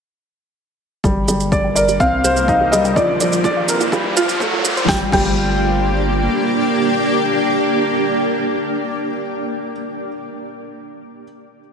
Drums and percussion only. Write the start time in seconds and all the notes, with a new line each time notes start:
1.04 kick, shaker
1.28 shaker
1.40 shaker
1.52 kick, shaker
1.76 shaker
1.88 shaker
2.00 kick, shaker
2.24 shaker
2.36 shaker
2.48 kick, shaker
2.73 shaker
2.85 shaker
2.96 kick, shaker
3.20 shaker
3.32 shaker
3.44 kick, shaker
3.68 shaker
3.80 shaker
3.92 kick, shaker
4.17 shaker
4.29 shaker
4.40 kick, shaker
4.65 shaker
4.77 shaker
4.88 kick, snare
5.12 kick, crash